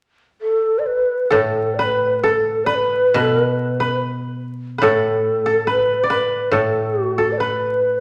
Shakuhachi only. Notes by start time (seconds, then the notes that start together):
0.41 A4
0.79 D5
0.87 B4
1.26 B4
1.37 A4
1.74 D5
1.85 B4
2.19 B4
2.31 A4
2.65 D5
2.75 B4
3.20 A4
3.44 B4
4.83 A4
5.70 B4
6.11 B4
6.51 A4
7.05 F#4
7.32 D5
7.38 B4